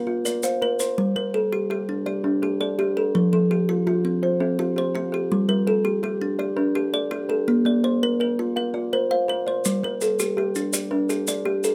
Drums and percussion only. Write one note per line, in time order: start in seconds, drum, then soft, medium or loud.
0.26 maracas medium
0.43 maracas medium
0.80 maracas medium
9.65 maracas medium
10.01 maracas medium
10.19 maracas medium
10.55 maracas medium
10.73 maracas medium
11.10 maracas medium
11.27 maracas medium
11.64 maracas medium